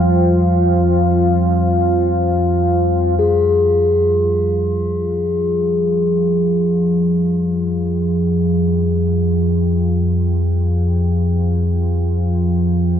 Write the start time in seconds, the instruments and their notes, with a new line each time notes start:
Already playing: synth drone F2 F3, singing bowl G3, ambient pad F4 C5 F5 G5
3.19 synth drone F2 F3, ambient pad F4, singing bowl G#4
4.28 ambient pad C5
6.19 ambient pad G5
7.82 ambient pad F5